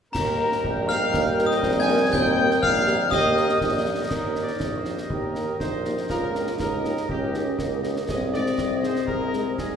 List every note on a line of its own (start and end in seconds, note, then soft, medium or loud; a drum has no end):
0.13 0.56 D#2 medium
0.13 3.83 G3 medium
0.13 3.83 D#4 medium
0.13 0.84 A#4 loud
0.13 3.82 A#4 medium
0.13 3.82 G5 medium
0.13 0.84 A#5 medium
0.13 0.89 A#5 medium
0.13 concert bass drum medium
0.13 snare medium
0.13 crash medium
0.38 0.47 A#3 medium
0.38 0.48 G4 medium
0.38 0.47 A#4 medium
0.52 snare medium
0.63 1.05 A#1 medium
0.63 1.10 G4 medium
0.63 concert bass drum medium
0.88 0.97 A#3 medium
0.88 0.97 G4 medium
0.88 0.97 A#4 medium
0.88 1.43 F5 loud
0.88 1.46 F6 medium
0.88 1.42 F6 loud
0.88 snare medium
1.13 1.55 D#2 loud
1.13 1.59 A#3 medium
1.13 concert bass drum medium
1.13 snare medium
1.38 1.47 A#3 medium
1.38 1.47 G4 medium
1.38 1.47 A#4 medium
1.38 snare medium
1.47 1.80 D#5 loud
1.47 1.77 D#6 medium
1.47 1.78 D#6 medium
1.51 snare medium
1.63 2.04 A#1 loud
1.63 2.64 C4 medium
1.63 concert bass drum medium
1.63 snare medium
1.79 2.11 G#5 loud
1.79 2.10 G#6 loud
1.88 1.97 A#3 medium
1.88 1.97 G4 medium
1.88 1.97 A#4 medium
2.13 2.54 D#2 loud
2.13 2.62 G5 loud
2.13 2.59 G6 medium
2.13 2.59 G6 loud
2.13 concert bass drum medium
2.13 snare medium
2.37 2.46 A#3 medium
2.37 2.47 G4 medium
2.37 2.46 A#4 medium
2.51 snare medium
2.62 3.04 A#1 loud
2.62 3.11 A#3 medium
2.62 3.08 F5 loud
2.62 3.12 F6 loud
2.62 3.09 F6 loud
2.62 concert bass drum medium
2.87 2.96 A#3 medium
2.87 2.96 G4 medium
2.87 2.96 A#4 medium
2.87 snare medium
3.10 3.53 D#2 loud
3.10 3.58 G4 loud
3.10 3.58 D#5 loud
3.10 4.10 D#6 loud
3.10 4.07 D#6 loud
3.10 concert bass drum medium
3.10 snare medium
3.36 3.46 A#3 medium
3.36 3.46 G4 medium
3.36 3.45 A#4 medium
3.36 snare medium
3.49 snare medium
3.61 4.03 A#1 medium
3.61 3.73 D#4 medium
3.61 4.07 D#5 medium
3.61 concert bass drum medium
3.61 snare medium
3.86 3.95 A#3 medium
3.86 3.95 G4 medium
3.86 3.95 A#4 medium
4.09 4.53 D#2 medium
4.09 5.07 D#4 medium
4.09 6.06 G4 medium
4.09 4.43 A#4 medium
4.09 6.06 D#5 medium
4.09 concert bass drum medium
4.09 snare medium
4.09 crash soft
4.35 4.45 A#3 soft
4.35 4.45 D#4 soft
4.35 4.45 G4 soft
4.35 snare medium
4.42 4.74 D5 medium
4.48 snare soft
4.60 5.02 A#1 medium
4.60 concert bass drum medium
4.60 snare medium
4.75 5.10 C5 medium
4.85 4.95 A#3 medium
4.85 4.95 D#4 medium
4.85 4.95 G4 soft
4.85 snare medium
4.98 snare soft
5.10 5.52 D#2 medium
5.10 5.57 G4 medium
5.10 5.60 A#4 medium
5.10 concert bass drum medium
5.35 5.44 A#3 medium
5.35 5.44 D#4 soft
5.35 5.44 G4 medium
5.35 snare medium
5.59 6.02 A#1 medium
5.59 6.06 D#4 medium
5.59 5.94 C5 medium
5.59 concert bass drum medium
5.59 snare medium
5.85 5.95 A#3 medium
5.85 5.94 D#4 medium
5.85 5.95 G4 medium
5.85 snare medium
5.97 snare soft
6.08 6.52 C#2 medium
6.08 6.56 F4 medium
6.08 8.05 G4 medium
6.08 6.55 A#4 medium
6.08 8.05 D#5 medium
6.08 concert bass drum medium
6.08 snare medium
6.35 6.44 A#3 medium
6.35 6.44 D#4 medium
6.35 6.44 G4 medium
6.35 snare medium
6.47 snare medium
6.58 6.97 C#2 medium
6.58 7.10 D#4 medium
6.58 7.05 A#4 medium
6.58 concert bass drum medium
6.58 snare medium
6.84 6.94 A#3 medium
6.84 6.93 D#4 medium
6.84 6.94 G4 medium
6.84 snare medium
6.97 snare medium
7.08 7.51 C#2 medium
7.08 7.58 C#4 medium
7.08 7.56 G4 medium
7.08 concert bass drum medium
7.34 7.43 A#3 medium
7.34 7.43 D#4 medium
7.34 7.43 G4 medium
7.34 snare medium
7.59 8.01 C#2 medium
7.59 8.05 A#3 medium
7.59 concert bass drum medium
7.59 snare medium
7.83 7.92 A#3 medium
7.83 7.92 D#4 medium
7.83 7.92 G4 medium
7.83 snare medium
7.96 snare medium
8.09 8.50 C2 medium
8.09 9.60 C4 medium
8.09 9.76 G#4 medium
8.09 8.20 D#5 loud
8.09 9.76 D#5 medium
8.09 concert bass drum medium
8.09 snare medium
8.09 crash soft
8.33 8.42 G#3 medium
8.33 8.42 D#4 medium
8.33 8.42 G#4 medium
8.33 8.80 D5 loud
8.33 snare medium
8.46 snare medium
8.58 9.00 C2 medium
8.58 concert bass drum medium
8.58 snare medium
8.82 8.92 G#3 medium
8.82 8.92 D#4 medium
8.82 8.92 G#4 medium
8.82 9.08 C5 medium
8.82 snare medium
8.96 snare soft
9.07 9.50 C2 medium
9.07 9.54 A#4 medium
9.07 concert bass drum medium
9.33 9.42 G#3 medium
9.33 9.42 D#4 medium
9.33 9.42 G#4 medium
9.33 snare medium
9.58 9.76 C2 medium
9.58 9.76 D#4 medium
9.58 9.76 G#4 medium
9.58 concert bass drum medium
9.58 snare medium